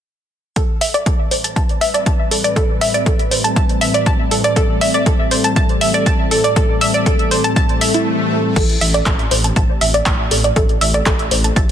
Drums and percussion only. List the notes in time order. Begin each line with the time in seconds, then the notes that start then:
0.56 kick, closed hi-hat
0.81 open hi-hat
0.94 closed hi-hat
1.06 kick, closed hi-hat
1.31 open hi-hat
1.44 closed hi-hat
1.56 kick, closed hi-hat
1.69 closed hi-hat
1.81 open hi-hat
1.94 closed hi-hat
2.06 kick, closed hi-hat
2.31 open hi-hat
2.44 closed hi-hat
2.56 kick, closed hi-hat
2.81 open hi-hat
2.94 closed hi-hat
3.06 kick, closed hi-hat
3.19 closed hi-hat
3.31 open hi-hat
3.44 closed hi-hat
3.56 kick, closed hi-hat
3.69 closed hi-hat
3.81 open hi-hat
3.94 closed hi-hat
4.06 kick, closed hi-hat
4.31 open hi-hat
4.44 closed hi-hat
4.56 kick, closed hi-hat
4.81 open hi-hat
4.94 closed hi-hat
5.06 kick, closed hi-hat
5.31 open hi-hat
5.44 closed hi-hat
5.56 kick, closed hi-hat
5.69 closed hi-hat
5.81 open hi-hat
5.94 closed hi-hat
6.06 kick, closed hi-hat
6.31 open hi-hat
6.44 closed hi-hat
6.56 kick, closed hi-hat
6.81 open hi-hat
6.94 closed hi-hat
7.06 kick, closed hi-hat
7.19 closed hi-hat
7.31 open hi-hat
7.44 closed hi-hat
7.56 kick, closed hi-hat
7.69 closed hi-hat
7.81 open hi-hat
7.94 closed hi-hat
8.56 kick, closed hi-hat, crash
8.69 closed hi-hat
8.81 open hi-hat
8.94 closed hi-hat
9.06 kick, clap, closed hi-hat
9.19 closed hi-hat
9.31 open hi-hat
9.44 closed hi-hat
9.56 kick, closed hi-hat
9.81 open hi-hat
9.94 closed hi-hat
10.06 kick, clap, closed hi-hat
10.31 open hi-hat
10.44 closed hi-hat
10.56 kick, closed hi-hat
10.69 closed hi-hat
10.81 open hi-hat
10.94 closed hi-hat
11.06 kick, clap, closed hi-hat
11.19 closed hi-hat
11.31 open hi-hat
11.44 closed hi-hat
11.56 kick, closed hi-hat